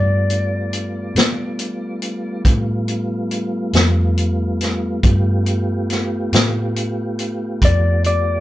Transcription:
0.00 1.12 G2 medium
0.00 5.00 G3 soft
0.00 5.00 A3 medium
0.00 5.00 B3 medium
0.00 5.00 F4 medium
0.00 2.42 D5 medium
0.30 closed hi-hat soft
0.73 closed hi-hat medium
1.15 2.41 B2 medium
1.15 snare medium
1.15 closed hi-hat medium
1.59 closed hi-hat medium
2.02 closed hi-hat soft
2.45 3.70 A2 medium
2.45 kick medium
2.45 closed hi-hat medium
2.88 closed hi-hat soft
3.31 closed hi-hat soft
3.73 4.99 F2 medium
3.73 snare medium
3.73 closed hi-hat medium
4.18 closed hi-hat soft
4.61 snare soft
4.61 closed hi-hat medium
5.03 6.28 G2 medium
5.03 8.40 A3 medium
5.03 8.40 B3 medium
5.03 8.40 F4 medium
5.03 8.40 G4 medium
5.03 kick medium
5.03 closed hi-hat medium
5.46 closed hi-hat soft
5.90 snare soft
5.90 closed hi-hat soft
6.32 7.57 A2 medium
6.32 snare medium
6.32 closed hi-hat medium
6.76 closed hi-hat medium
7.19 closed hi-hat soft
7.62 8.40 F2 medium
7.62 8.05 D5 medium
7.62 kick medium
7.62 closed hi-hat medium
8.04 8.40 D5 medium
8.04 closed hi-hat medium

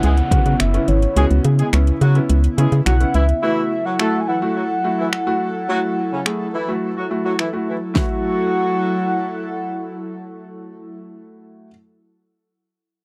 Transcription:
0.00 0.22 C#2 medium
0.00 3.39 C#3 medium
0.00 0.13 G#3 medium
0.00 3.39 B3 medium
0.00 7.92 E4 medium
0.00 0.13 G#4 medium
0.00 0.61 F#5 loud
0.00 closed hi-hat medium
0.00 downlifter medium
0.17 closed hi-hat medium
0.31 0.41 C#3 medium
0.31 0.51 B3 medium
0.31 0.51 C#4 medium
0.31 0.51 F#4 medium
0.31 kick medium
0.31 closed hi-hat medium
0.46 0.55 C#3 medium
0.46 0.55 F#3 medium
0.46 0.55 F#4 medium
0.46 closed hi-hat soft
0.60 0.78 F#1 medium
0.60 0.90 E5 medium
0.60 finger snap loud
0.60 closed hi-hat medium
0.74 0.93 B3 medium
0.74 0.93 C#4 medium
0.74 0.94 E4 medium
0.74 closed hi-hat medium
0.88 1.07 G#1 medium
0.88 1.45 C#5 medium
0.88 closed hi-hat medium
1.02 closed hi-hat medium
1.16 1.26 C#2 loud
1.16 1.26 G#3 medium
1.16 1.42 B3 medium
1.16 1.42 C#4 medium
1.16 1.42 F#4 medium
1.16 1.26 G#4 loud
1.16 closed hi-hat medium
1.31 1.40 C#2 loud
1.31 closed hi-hat soft
1.44 1.63 C#3 loud
1.44 closed hi-hat medium
1.59 1.68 G#3 medium
1.59 1.68 G#4 medium
1.59 closed hi-hat medium
1.73 1.91 C#2 loud
1.73 1.92 B3 medium
1.73 1.93 C#4 medium
1.73 1.93 E4 medium
1.73 finger snap loud
1.73 closed hi-hat medium
1.87 closed hi-hat medium
2.01 2.20 C#3 loud
2.01 2.20 F#3 medium
2.01 2.20 F#4 medium
2.01 closed hi-hat medium
2.15 2.35 B3 medium
2.15 2.35 C#4 medium
2.15 2.35 E4 medium
2.15 closed hi-hat soft
2.29 2.48 C#2 loud
2.29 closed hi-hat medium
2.44 closed hi-hat soft
2.58 2.67 C#3 medium
2.58 2.77 G#3 medium
2.58 2.77 B3 medium
2.58 2.77 C#4 medium
2.58 2.78 E4 medium
2.58 2.77 G#4 medium
2.58 closed hi-hat medium
2.72 2.81 C#3 medium
2.72 closed hi-hat soft
2.86 3.05 B1 loud
2.86 2.96 F#3 medium
2.86 2.96 F#4 medium
2.86 3.16 F#5 loud
2.86 finger snap loud
2.86 closed hi-hat medium
3.00 3.20 B3 medium
3.00 3.20 C#4 medium
3.00 3.20 E4 medium
3.00 closed hi-hat medium
3.14 3.33 C#2 medium
3.14 3.24 E3 medium
3.14 3.24 E4 medium
3.14 3.42 E5 loud
3.14 closed hi-hat medium
3.29 closed hi-hat medium
3.43 3.61 E3 medium
3.43 7.92 F#3 medium
3.43 3.69 A3 medium
3.43 3.61 E4 medium
3.43 3.69 E4 medium
3.43 3.69 F#4 medium
3.43 7.92 A4 medium
3.43 3.87 E5 loud
3.85 3.95 F#3 medium
3.85 3.95 F#4 medium
3.85 4.20 F#5 loud
3.99 4.19 A3 medium
3.99 4.18 A3 medium
3.99 4.19 E4 medium
3.99 4.19 F#4 medium
3.99 4.18 A4 medium
3.99 finger snap loud
4.21 4.29 G#5 medium
4.28 4.37 E3 medium
4.28 4.37 E4 medium
4.28 7.39 F#5 loud
4.42 4.61 A3 medium
4.42 4.61 E4 medium
4.42 4.61 F#4 medium
4.56 4.65 F#3 medium
4.56 4.65 F#4 medium
4.84 5.04 A3 medium
4.84 5.04 E4 medium
4.84 5.04 F#4 medium
4.99 5.08 E3 medium
4.99 5.08 E4 medium
5.13 finger snap loud
5.27 5.46 A3 medium
5.27 5.46 E4 medium
5.27 5.46 F#4 medium
5.69 5.79 F#3 medium
5.69 5.95 A3 medium
5.69 5.95 E4 medium
5.69 5.79 F#4 loud
5.69 5.95 F#4 medium
6.12 6.21 C#3 medium
6.12 6.21 C#4 medium
6.26 6.45 A3 medium
6.26 6.45 E4 medium
6.26 6.45 G#4 medium
6.26 finger snap medium
6.54 6.73 E3 medium
6.54 6.73 E4 medium
6.68 6.88 A3 medium
6.68 6.88 E4 medium
6.68 6.88 F#4 medium
6.97 7.06 F#3 medium
6.97 7.06 F#4 medium
7.11 7.30 A3 medium
7.11 7.30 E4 medium
7.11 7.30 F#4 medium
7.25 7.34 F#3 medium
7.25 7.34 F#4 medium
7.39 7.49 E3 medium
7.39 7.49 E4 medium
7.39 finger snap medium
7.53 7.73 A3 medium
7.53 7.73 E4 medium
7.53 7.73 F#4 medium
7.68 7.77 E3 medium
7.68 7.77 E4 medium
7.94 10.98 F#3 medium
7.94 9.62 F#3 medium
7.94 11.67 A3 medium
7.94 11.68 E4 medium
7.94 10.98 E4 medium
7.94 9.62 F#4 medium
7.94 11.69 F#4 medium
7.94 10.98 A4 medium
7.94 10.98 F#5 loud
7.94 kick medium
7.94 snare medium

